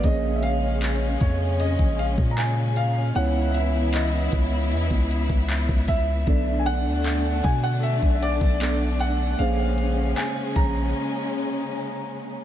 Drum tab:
HH |x-x-x-x-x-x-x-x-|x-x-x-x-x-x-x-o-|x-x-x-x-x-x-x-x-|x-x-x-x---------|
CP |----x-------x---|----x-------x---|----x-------x---|----x-----------|
BD |o-----o--o-o----|------o--o-o-oo-|o-----o--o-o----|------o---------|